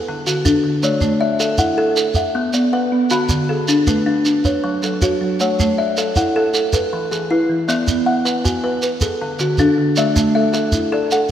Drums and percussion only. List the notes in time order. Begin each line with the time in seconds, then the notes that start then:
0.27 shekere
0.45 shekere
0.83 shekere
1.01 shekere
1.40 shekere
1.58 shekere
1.96 shekere
2.14 shekere
2.53 shekere
3.10 shekere
3.29 shekere
3.68 shekere
3.87 shekere
4.25 shekere
4.45 shekere
4.83 shekere
5.02 shekere
5.40 shekere
5.60 shekere
5.97 shekere
6.16 shekere
6.54 shekere
6.73 shekere
7.12 shekere
7.69 shekere
7.88 shekere
8.26 shekere
8.45 shekere
8.82 shekere
9.01 shekere
9.39 shekere
9.58 shekere
9.96 shekere
10.16 shekere
10.53 shekere
10.72 shekere
11.11 shekere